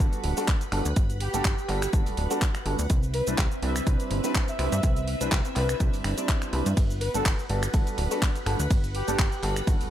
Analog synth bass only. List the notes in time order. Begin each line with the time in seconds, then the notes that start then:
0.24 D1
0.72 G1
0.86 D2
0.97 G1
1.34 G1
1.45 G1
1.69 G1
1.93 G1
2.07 D1
2.17 D1
2.66 G1
2.79 D2
2.90 C2
3.27 C2
3.38 C2
3.63 C2
3.87 C2
4.11 G1
4.59 C2
4.72 G2
4.83 C2
5.21 C2
5.32 C2
5.56 C2
5.80 C2
5.94 G1
6.05 G1
6.53 C2
6.66 G2
6.77 G1
7.15 G1
7.26 G1
7.50 G1
7.74 G1
7.98 D1
8.46 G1
8.60 D2
8.70 G1
9.08 G1
9.19 G1
9.43 G1
9.67 G1
9.81 D1